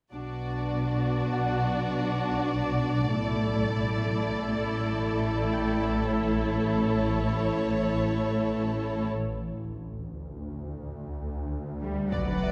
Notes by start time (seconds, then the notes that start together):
0.12 B1 B2 D4 F#4 D5
1.33 F#5
2.24 A5
3.12 A1 A2 A3 E4 A4
4.62 E6
5.53 G5
6.13 C#5
9.14 D2
11.82 G3
12.12 B1 F#3 B4 D5 F#5, impact
12.43 E5